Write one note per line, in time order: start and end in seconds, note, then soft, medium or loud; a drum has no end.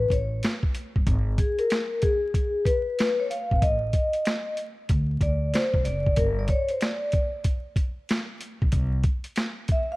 0.10 0.40 A1 medium
0.10 0.41 C#5 medium
0.10 kick medium
0.10 closed hi-hat medium
0.43 snare loud
0.43 closed hi-hat medium
0.63 kick medium
0.75 closed hi-hat medium
0.96 1.06 G1 medium
0.96 kick medium
1.07 1.36 G#1 loud
1.07 kick loud
1.07 closed hi-hat medium
1.38 1.61 G#4 medium
1.38 kick medium
1.38 closed hi-hat medium
1.59 1.99 A#4 medium
1.59 closed hi-hat soft
1.70 snare loud
1.70 closed hi-hat medium
2.02 2.62 G#4 medium
2.02 kick medium
2.02 closed hi-hat medium
2.34 kick medium
2.34 closed hi-hat medium
2.65 3.20 B4 medium
2.65 kick medium
2.65 closed hi-hat medium
2.99 snare loud
2.99 closed hi-hat medium
3.20 3.30 C#5 medium
3.30 3.60 F5 loud
3.30 closed hi-hat medium
3.51 3.61 G#1 medium
3.51 kick medium
3.62 3.91 A1 loud
3.62 4.54 D#5 medium
3.62 kick loud
3.62 closed hi-hat medium
3.93 kick medium
3.93 closed hi-hat medium
4.13 closed hi-hat soft
4.25 snare loud
4.25 closed hi-hat medium
4.57 closed hi-hat medium
4.89 5.19 D2 loud
4.89 kick medium
4.89 closed hi-hat medium
5.21 5.51 D2 loud
5.21 5.55 D5 medium
5.21 kick medium
5.21 closed hi-hat medium
5.54 5.84 C5 medium
5.54 snare loud
5.54 closed hi-hat medium
5.74 5.87 C2 medium
5.74 kick medium
5.85 6.15 F#1 medium
5.85 6.18 D5 loud
5.85 closed hi-hat medium
6.07 kick medium
6.16 6.47 G1 loud
6.16 6.39 A#4 medium
6.16 kick loud
6.16 closed hi-hat medium
6.39 6.44 D5 medium
6.48 6.71 C#5 medium
6.48 kick medium
6.48 closed hi-hat medium
6.68 6.82 C5 medium
6.68 closed hi-hat soft
6.81 7.41 D5 medium
6.81 snare medium
6.81 closed hi-hat medium
7.12 kick medium
7.12 closed hi-hat medium
7.44 kick medium
7.44 closed hi-hat medium
7.76 kick medium
7.76 closed hi-hat medium
8.09 snare loud
8.09 closed hi-hat medium
8.41 closed hi-hat medium
8.62 8.72 B1 medium
8.62 kick medium
8.72 9.02 C2 loud
8.72 kick loud
8.72 closed hi-hat medium
9.04 kick medium
9.04 closed hi-hat medium
9.24 closed hi-hat medium
9.36 snare loud
9.36 closed hi-hat loud
9.68 9.92 E5 medium
9.68 kick loud
9.68 closed hi-hat medium
9.92 9.96 F5 medium